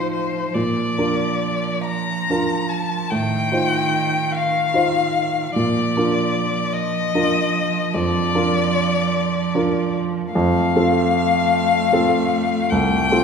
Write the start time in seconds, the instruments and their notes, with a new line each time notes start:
Already playing: grand piano A2 D#4 F4 C5, cello F3
0.13 violin C5
0.54 grand piano A#2, cello F3, violin D5
0.98 grand piano D4 F4 A#4
1.85 violin A#5
2.30 grand piano D4 F4 A#4
2.69 violin A5
3.10 grand piano A2, cello D#3, violin G5
3.52 grand piano D#4 F4 C5
4.32 violin F5
4.74 grand piano D#4 F4 C5
5.56 grand piano A#2, cello F3, violin D5
5.97 grand piano D4 F4 A#4
6.73 violin D#5
7.15 grand piano D4 F4 A#4
7.94 grand piano F2, violin D5
8.35 grand piano D4 F4 A#4
9.55 grand piano D4 F4 A#4
10.33 grand piano F2, cello A3, violin F5
10.76 grand piano C4 F4 A4
11.93 grand piano C4 F4 A4
12.70 grand piano C2, violin G5
13.12 grand piano C4 F4 A4